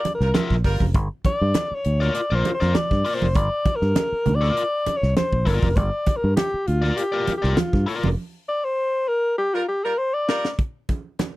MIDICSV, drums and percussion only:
0, 0, Header, 1, 2, 480
1, 0, Start_track
1, 0, Key_signature, -2, "minor"
1, 0, Tempo, 602410
1, 756, Time_signature, 4, 2, 24, 8
1, 9056, End_track
2, 0, Start_track
2, 0, Title_t, "Drums"
2, 36, Note_on_c, 9, 42, 72
2, 40, Note_on_c, 9, 62, 58
2, 116, Note_off_c, 9, 42, 0
2, 120, Note_off_c, 9, 62, 0
2, 164, Note_on_c, 9, 38, 36
2, 244, Note_off_c, 9, 38, 0
2, 274, Note_on_c, 9, 42, 77
2, 275, Note_on_c, 9, 38, 118
2, 281, Note_on_c, 9, 63, 92
2, 354, Note_off_c, 9, 42, 0
2, 355, Note_off_c, 9, 38, 0
2, 361, Note_off_c, 9, 63, 0
2, 402, Note_on_c, 9, 36, 75
2, 408, Note_on_c, 9, 38, 33
2, 481, Note_off_c, 9, 36, 0
2, 487, Note_off_c, 9, 38, 0
2, 514, Note_on_c, 9, 36, 95
2, 514, Note_on_c, 9, 46, 75
2, 593, Note_off_c, 9, 36, 0
2, 594, Note_off_c, 9, 46, 0
2, 640, Note_on_c, 9, 36, 88
2, 649, Note_on_c, 9, 63, 72
2, 720, Note_off_c, 9, 36, 0
2, 729, Note_off_c, 9, 63, 0
2, 752, Note_on_c, 9, 42, 88
2, 753, Note_on_c, 9, 36, 123
2, 753, Note_on_c, 9, 62, 33
2, 832, Note_off_c, 9, 42, 0
2, 832, Note_off_c, 9, 62, 0
2, 833, Note_off_c, 9, 36, 0
2, 990, Note_on_c, 9, 42, 73
2, 993, Note_on_c, 9, 36, 103
2, 999, Note_on_c, 9, 62, 62
2, 1069, Note_off_c, 9, 42, 0
2, 1073, Note_off_c, 9, 36, 0
2, 1079, Note_off_c, 9, 62, 0
2, 1227, Note_on_c, 9, 42, 94
2, 1232, Note_on_c, 9, 38, 109
2, 1236, Note_on_c, 9, 63, 79
2, 1307, Note_off_c, 9, 42, 0
2, 1312, Note_off_c, 9, 38, 0
2, 1316, Note_off_c, 9, 63, 0
2, 1469, Note_on_c, 9, 42, 79
2, 1548, Note_off_c, 9, 42, 0
2, 1604, Note_on_c, 9, 38, 32
2, 1683, Note_off_c, 9, 38, 0
2, 1708, Note_on_c, 9, 42, 95
2, 1788, Note_off_c, 9, 42, 0
2, 1950, Note_on_c, 9, 42, 77
2, 1955, Note_on_c, 9, 62, 58
2, 2030, Note_off_c, 9, 42, 0
2, 2035, Note_off_c, 9, 62, 0
2, 2079, Note_on_c, 9, 38, 37
2, 2159, Note_off_c, 9, 38, 0
2, 2189, Note_on_c, 9, 42, 75
2, 2190, Note_on_c, 9, 38, 102
2, 2190, Note_on_c, 9, 63, 83
2, 2269, Note_off_c, 9, 42, 0
2, 2269, Note_off_c, 9, 63, 0
2, 2270, Note_off_c, 9, 38, 0
2, 2319, Note_on_c, 9, 36, 82
2, 2322, Note_on_c, 9, 38, 32
2, 2398, Note_off_c, 9, 36, 0
2, 2402, Note_off_c, 9, 38, 0
2, 2432, Note_on_c, 9, 46, 67
2, 2511, Note_off_c, 9, 46, 0
2, 2563, Note_on_c, 9, 63, 71
2, 2643, Note_off_c, 9, 63, 0
2, 2667, Note_on_c, 9, 62, 34
2, 2673, Note_on_c, 9, 36, 127
2, 2673, Note_on_c, 9, 42, 96
2, 2746, Note_off_c, 9, 62, 0
2, 2752, Note_off_c, 9, 36, 0
2, 2753, Note_off_c, 9, 42, 0
2, 2910, Note_on_c, 9, 42, 71
2, 2913, Note_on_c, 9, 36, 102
2, 2913, Note_on_c, 9, 62, 56
2, 2990, Note_off_c, 9, 42, 0
2, 2992, Note_off_c, 9, 36, 0
2, 2993, Note_off_c, 9, 62, 0
2, 3039, Note_on_c, 9, 38, 36
2, 3118, Note_off_c, 9, 38, 0
2, 3150, Note_on_c, 9, 42, 95
2, 3154, Note_on_c, 9, 38, 115
2, 3156, Note_on_c, 9, 63, 84
2, 3229, Note_off_c, 9, 42, 0
2, 3234, Note_off_c, 9, 38, 0
2, 3235, Note_off_c, 9, 63, 0
2, 3392, Note_on_c, 9, 64, 78
2, 3394, Note_on_c, 9, 42, 73
2, 3472, Note_off_c, 9, 64, 0
2, 3474, Note_off_c, 9, 42, 0
2, 3532, Note_on_c, 9, 38, 33
2, 3612, Note_off_c, 9, 38, 0
2, 3639, Note_on_c, 9, 42, 89
2, 3718, Note_off_c, 9, 42, 0
2, 3876, Note_on_c, 9, 62, 57
2, 3877, Note_on_c, 9, 42, 77
2, 3956, Note_off_c, 9, 62, 0
2, 3957, Note_off_c, 9, 42, 0
2, 4006, Note_on_c, 9, 38, 35
2, 4086, Note_off_c, 9, 38, 0
2, 4116, Note_on_c, 9, 42, 80
2, 4117, Note_on_c, 9, 38, 121
2, 4117, Note_on_c, 9, 63, 83
2, 4195, Note_off_c, 9, 42, 0
2, 4196, Note_off_c, 9, 38, 0
2, 4196, Note_off_c, 9, 63, 0
2, 4243, Note_on_c, 9, 36, 85
2, 4322, Note_off_c, 9, 36, 0
2, 4356, Note_on_c, 9, 36, 84
2, 4359, Note_on_c, 9, 46, 69
2, 4435, Note_off_c, 9, 36, 0
2, 4439, Note_off_c, 9, 46, 0
2, 4483, Note_on_c, 9, 36, 86
2, 4484, Note_on_c, 9, 63, 65
2, 4562, Note_off_c, 9, 36, 0
2, 4564, Note_off_c, 9, 63, 0
2, 4588, Note_on_c, 9, 62, 33
2, 4595, Note_on_c, 9, 36, 127
2, 4595, Note_on_c, 9, 42, 86
2, 4667, Note_off_c, 9, 62, 0
2, 4675, Note_off_c, 9, 36, 0
2, 4675, Note_off_c, 9, 42, 0
2, 4833, Note_on_c, 9, 62, 53
2, 4835, Note_on_c, 9, 42, 74
2, 4836, Note_on_c, 9, 36, 104
2, 4912, Note_off_c, 9, 62, 0
2, 4915, Note_off_c, 9, 42, 0
2, 4916, Note_off_c, 9, 36, 0
2, 5075, Note_on_c, 9, 42, 86
2, 5077, Note_on_c, 9, 63, 76
2, 5079, Note_on_c, 9, 38, 107
2, 5154, Note_off_c, 9, 42, 0
2, 5157, Note_off_c, 9, 63, 0
2, 5159, Note_off_c, 9, 38, 0
2, 5317, Note_on_c, 9, 42, 82
2, 5397, Note_off_c, 9, 42, 0
2, 5451, Note_on_c, 9, 38, 39
2, 5530, Note_off_c, 9, 38, 0
2, 5555, Note_on_c, 9, 42, 100
2, 5635, Note_off_c, 9, 42, 0
2, 5795, Note_on_c, 9, 42, 81
2, 5796, Note_on_c, 9, 62, 56
2, 5875, Note_off_c, 9, 42, 0
2, 5876, Note_off_c, 9, 62, 0
2, 5923, Note_on_c, 9, 38, 35
2, 6003, Note_off_c, 9, 38, 0
2, 6031, Note_on_c, 9, 42, 76
2, 6032, Note_on_c, 9, 38, 110
2, 6035, Note_on_c, 9, 63, 86
2, 6110, Note_off_c, 9, 42, 0
2, 6111, Note_off_c, 9, 38, 0
2, 6114, Note_off_c, 9, 63, 0
2, 6161, Note_on_c, 9, 36, 81
2, 6167, Note_on_c, 9, 38, 34
2, 6241, Note_off_c, 9, 36, 0
2, 6247, Note_off_c, 9, 38, 0
2, 6276, Note_on_c, 9, 46, 77
2, 6356, Note_off_c, 9, 46, 0
2, 6402, Note_on_c, 9, 63, 75
2, 6482, Note_off_c, 9, 63, 0
2, 8196, Note_on_c, 9, 38, 99
2, 8276, Note_off_c, 9, 38, 0
2, 8324, Note_on_c, 9, 38, 97
2, 8404, Note_off_c, 9, 38, 0
2, 8435, Note_on_c, 9, 42, 71
2, 8436, Note_on_c, 9, 36, 106
2, 8515, Note_off_c, 9, 36, 0
2, 8515, Note_off_c, 9, 42, 0
2, 8675, Note_on_c, 9, 42, 63
2, 8676, Note_on_c, 9, 62, 56
2, 8677, Note_on_c, 9, 36, 91
2, 8755, Note_off_c, 9, 42, 0
2, 8756, Note_off_c, 9, 62, 0
2, 8757, Note_off_c, 9, 36, 0
2, 8914, Note_on_c, 9, 42, 80
2, 8919, Note_on_c, 9, 38, 98
2, 8920, Note_on_c, 9, 63, 76
2, 8994, Note_off_c, 9, 42, 0
2, 8999, Note_off_c, 9, 38, 0
2, 9000, Note_off_c, 9, 63, 0
2, 9056, End_track
0, 0, End_of_file